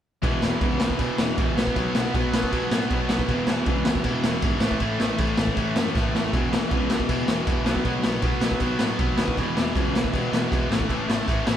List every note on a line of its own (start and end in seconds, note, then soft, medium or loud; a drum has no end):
0.22 0.35 E1 medium
0.22 0.42 E2 loud
0.22 0.43 B2 loud
0.22 0.43 E3 loud
0.22 kick loud
0.22 crash medium
0.42 0.55 E1 medium
0.42 0.60 E2 medium
0.42 0.61 B2 medium
0.42 0.61 E3 medium
0.42 snare loud
0.61 0.85 C#2 medium
0.61 0.81 E2 loud
0.61 0.82 B2 loud
0.61 0.81 E3 loud
0.61 kick loud
0.61 crash medium
0.80 0.97 E2 medium
0.80 0.98 B2 medium
0.80 0.98 E3 medium
0.80 snare loud
0.90 kick medium
0.99 1.11 E1 loud
0.99 1.18 E2 loud
0.99 1.17 B2 loud
0.99 1.18 E3 loud
0.99 kick loud
0.99 crash medium
1.18 1.31 E1 medium
1.18 1.37 E2 medium
1.18 1.37 B2 medium
1.18 1.38 E3 loud
1.18 snare loud
1.38 1.50 A#1 medium
1.38 1.56 E2 medium
1.38 1.56 B2 medium
1.38 1.56 E3 loud
1.38 kick loud
1.38 crash medium
1.55 1.68 B1 loud
1.55 1.75 B2 loud
1.55 1.75 F#3 loud
1.55 1.76 B3 loud
1.55 snare loud
1.67 kick medium
1.75 1.88 B1 medium
1.75 1.94 B2 loud
1.75 1.94 F#3 loud
1.75 1.95 B3 loud
1.75 kick medium
1.75 crash medium
1.94 2.06 B1 medium
1.94 2.13 B2 medium
1.94 2.14 F#3 medium
1.94 2.15 B3 loud
1.94 snare loud
2.14 2.26 B1 loud
2.14 2.33 B2 loud
2.14 2.32 F#3 loud
2.14 2.34 B3 loud
2.14 kick loud
2.14 crash medium
2.32 2.44 B1 medium
2.32 2.51 B2 medium
2.32 2.52 F#3 medium
2.32 2.51 B3 loud
2.32 snare loud
2.43 kick medium
2.52 2.64 B1 loud
2.52 2.71 B2 medium
2.52 2.71 F#3 loud
2.52 2.71 B3 loud
2.52 kick loud
2.52 crash medium
2.71 2.83 A2 loud
2.71 2.90 B2 medium
2.71 2.91 F#3 medium
2.71 2.92 B3 loud
2.71 snare loud
2.91 3.03 B1 medium
2.91 3.10 B2 loud
2.91 3.10 F#3 loud
2.91 3.11 B3 loud
2.91 kick loud
2.91 crash medium
3.09 3.22 B1 loud
3.09 3.28 B2 medium
3.09 3.28 F#3 loud
3.09 3.29 B3 loud
3.09 snare loud
3.19 kick medium
3.29 3.41 E1 loud
3.29 3.47 E2 loud
3.29 3.48 B2 loud
3.29 3.50 E3 loud
3.29 kick loud
3.29 crash medium
3.47 3.59 E1 medium
3.47 3.67 E2 medium
3.47 3.67 B2 medium
3.47 3.69 E3 medium
3.47 snare medium
3.66 3.90 C#2 loud
3.66 3.86 E2 loud
3.66 3.86 B2 loud
3.66 3.87 E3 loud
3.66 kick loud
3.66 crash medium
3.85 4.05 E2 medium
3.85 4.05 B2 medium
3.85 4.06 E3 medium
3.85 snare loud
3.95 kick loud
4.04 4.16 E1 loud
4.04 4.23 E2 loud
4.04 4.24 B2 loud
4.04 4.25 E3 loud
4.04 kick loud
4.04 crash medium
4.23 4.35 E1 medium
4.23 4.42 E2 medium
4.23 4.43 B2 loud
4.23 4.44 E3 loud
4.23 snare loud
4.42 4.54 G#1 medium
4.42 4.61 E2 medium
4.42 4.61 B2 loud
4.42 4.63 E3 loud
4.42 kick loud
4.42 crash medium
4.60 4.73 A1 loud
4.60 4.80 A2 loud
4.60 4.81 E3 loud
4.60 snare loud
4.64 4.81 A3 loud
4.71 kick medium
4.80 4.93 A1 medium
4.80 4.98 A2 loud
4.80 5.00 E3 medium
4.80 5.00 A3 loud
4.80 kick medium
4.80 crash medium
5.00 5.12 A1 medium
5.00 5.17 A2 medium
5.00 5.18 E3 medium
5.00 5.18 A3 medium
5.00 snare medium
5.18 5.30 A1 medium
5.18 5.37 A2 loud
5.18 5.37 E3 loud
5.18 5.38 A3 loud
5.18 kick loud
5.18 crash medium
5.37 5.50 A1 medium
5.37 5.55 A2 medium
5.37 5.57 E3 medium
5.37 5.56 A3 medium
5.37 snare loud
5.47 kick medium
5.57 5.69 A1 medium
5.57 5.75 A2 loud
5.57 5.76 E3 loud
5.57 5.76 A3 loud
5.57 kick loud
5.57 crash medium
5.76 5.88 F#2 medium
5.76 5.94 A2 medium
5.76 5.94 E3 medium
5.76 5.95 A3 medium
5.76 snare loud
5.95 6.07 A1 medium
5.95 6.13 A2 medium
5.95 6.13 E3 medium
5.95 6.14 A3 loud
5.95 kick loud
5.95 snare medium
6.13 6.25 A1 medium
6.13 6.32 A2 medium
6.13 6.32 E3 medium
6.13 6.33 A3 loud
6.13 snare medium
6.33 6.45 E1 loud
6.33 6.50 E2 loud
6.33 6.51 B2 loud
6.33 6.51 E3 loud
6.33 kick loud
6.33 crash medium
6.50 6.63 E1 medium
6.50 6.69 E2 medium
6.50 6.70 B2 medium
6.50 6.70 E3 medium
6.50 snare loud
6.70 6.95 C#2 loud
6.70 6.89 E2 loud
6.70 6.89 B2 loud
6.70 6.90 E3 loud
6.70 kick loud
6.70 crash medium
6.90 7.08 E2 medium
6.90 7.08 B2 medium
6.90 7.08 E3 medium
6.90 snare loud
7.00 kick medium
7.09 7.21 E1 loud
7.09 7.27 E2 loud
7.09 7.27 B2 loud
7.09 7.27 E3 loud
7.09 kick loud
7.09 crash medium
7.28 7.40 E1 medium
7.28 7.46 E2 medium
7.28 7.46 B2 medium
7.28 7.46 E3 loud
7.28 snare loud
7.47 7.59 E1 medium
7.47 7.65 E2 medium
7.47 7.64 B2 medium
7.47 7.65 E3 loud
7.47 kick loud
7.47 crash medium
7.65 7.77 B1 loud
7.65 7.84 B2 loud
7.65 7.84 F#3 loud
7.65 7.85 B3 loud
7.65 snare loud
7.76 kick medium
7.85 7.97 B1 medium
7.85 8.02 B2 medium
7.85 8.02 F#3 loud
7.85 8.05 B3 loud
7.85 kick loud
7.85 crash medium
8.03 8.16 B1 medium
8.03 8.22 B2 medium
8.03 8.23 F#3 medium
8.03 8.24 B3 medium
8.03 snare loud
8.22 8.34 B1 loud
8.22 8.42 B2 medium
8.22 8.42 F#3 loud
8.22 8.43 B3 loud
8.22 kick loud
8.22 crash medium
8.41 8.54 B1 loud
8.41 8.60 B2 medium
8.41 8.61 F#3 medium
8.41 8.61 B3 medium
8.41 snare loud
8.51 kick medium
8.60 8.73 B1 loud
8.60 8.79 B2 medium
8.60 8.79 F#3 loud
8.60 8.80 B3 loud
8.60 kick loud
8.60 crash medium
8.79 8.92 A2 medium
8.79 8.98 B2 medium
8.79 8.98 F#3 medium
8.79 8.98 B3 medium
8.79 snare loud
8.99 9.11 B1 medium
8.99 9.17 B2 loud
8.99 9.17 F#3 medium
8.99 9.18 B3 loud
8.99 kick loud
8.99 crash medium
9.18 9.30 D#2 loud
9.18 9.36 B2 medium
9.18 9.36 F#3 medium
9.18 9.37 B3 loud
9.18 snare loud
9.28 kick loud
9.37 9.50 E1 loud
9.37 9.56 E2 loud
9.37 9.56 B2 loud
9.37 9.58 E3 loud
9.37 kick loud
9.37 crash medium
9.55 9.68 E1 medium
9.55 9.75 E2 medium
9.55 9.75 B2 medium
9.55 9.77 E3 medium
9.55 snare loud
9.75 9.99 C#2 loud
9.75 9.94 E2 loud
9.75 9.94 B2 loud
9.75 9.95 E3 loud
9.75 kick loud
9.75 crash medium
9.95 10.11 E2 medium
9.95 10.12 B2 medium
9.95 10.13 E3 medium
9.95 snare loud
10.04 kick medium
10.13 10.26 E1 loud
10.13 10.30 E2 loud
10.13 10.31 B2 loud
10.13 10.32 E3 loud
10.13 kick loud
10.13 crash medium
10.32 10.45 E1 loud
10.32 10.50 E2 medium
10.32 10.50 B2 loud
10.32 10.52 E3 loud
10.32 snare loud
10.51 10.64 E1 medium
10.51 10.69 E2 loud
10.51 10.69 B2 loud
10.51 10.70 E3 loud
10.51 kick loud
10.51 crash medium
10.70 10.82 A1 loud
10.70 10.89 A2 loud
10.70 10.89 E3 loud
10.70 10.90 A3 loud
10.70 snare loud
10.80 kick loud
10.87 11.01 A1 loud
10.87 11.08 A2 medium
10.87 11.09 E3 loud
10.87 11.08 A3 loud
10.87 kick medium
10.87 crash medium
10.91 11.10 A3 loud
11.08 11.20 A1 medium
11.08 11.26 A2 medium
11.08 11.26 E3 medium
11.08 11.27 A3 medium
11.08 snare loud
11.27 11.40 A1 loud
11.27 11.45 A2 loud
11.27 11.45 E3 loud
11.27 11.46 A3 loud
11.27 kick loud
11.27 crash medium
11.46 11.57 A1 medium
11.46 11.57 A2 medium
11.46 11.57 E3 medium
11.46 11.57 A3 loud
11.46 snare loud